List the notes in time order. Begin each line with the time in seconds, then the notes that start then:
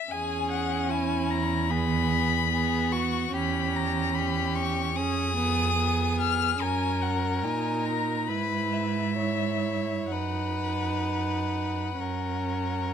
Already playing: E5
0.11 E2 C#4 G#4 G#5
0.51 F#5
0.90 E4 G#5
1.30 A#5
1.70 B3 G#4 B5
2.51 B3 G#4
2.92 F#4 C#6
3.33 E2 C#4 G4 B5
3.75 A#5
4.14 G4 B5
4.55 C#6
4.96 F2 C#4 G#4 D#6
5.37 B3
5.77 B3
6.20 F6
6.60 F#2 C#4 A#4 G#5
7.02 F#5
7.43 A#2 D#4 G#5
7.85 A#5
8.27 G#2 E4 B4 B5
8.72 E5
9.18 E4 C#5
10.10 F#2 D#4 B4 F#5
12.01 F#2 C#4 A#4